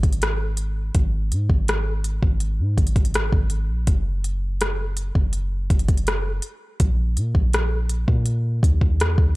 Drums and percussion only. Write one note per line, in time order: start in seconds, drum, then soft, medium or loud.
0.03 kick medium
0.03 closed hi-hat soft
0.13 closed hi-hat soft
0.22 cross-stick loud
0.22 closed hi-hat medium
0.57 closed hi-hat medium
0.95 kick loud
0.95 closed hi-hat medium
1.32 closed hi-hat medium
1.50 kick medium
1.68 cross-stick loud
1.68 closed hi-hat medium
2.04 closed hi-hat medium
2.23 kick medium
2.40 closed hi-hat medium
2.78 kick medium
2.78 closed hi-hat medium
2.87 closed hi-hat medium
2.96 kick medium
2.96 closed hi-hat soft
3.05 closed hi-hat soft
3.14 cross-stick loud
3.14 closed hi-hat medium
3.33 kick medium
3.50 closed hi-hat medium
3.87 kick loud
3.87 closed hi-hat medium
4.24 closed hi-hat medium
4.61 cross-stick loud
4.61 closed hi-hat medium
4.97 closed hi-hat medium
5.15 kick medium
5.33 closed hi-hat medium
5.70 kick loud
5.70 closed hi-hat medium
5.79 closed hi-hat medium
5.88 kick medium
5.88 closed hi-hat medium
5.97 closed hi-hat soft
6.07 cross-stick loud
6.07 closed hi-hat medium
6.42 closed hi-hat medium
6.80 kick loud
6.80 closed hi-hat medium
7.17 closed hi-hat medium
7.35 kick medium
7.53 cross-stick loud
7.53 closed hi-hat medium
7.89 closed hi-hat medium
8.08 kick medium
8.26 closed hi-hat medium
8.63 kick medium
8.63 closed hi-hat medium
8.81 kick medium
9.00 cross-stick loud
9.00 closed hi-hat medium
9.18 kick medium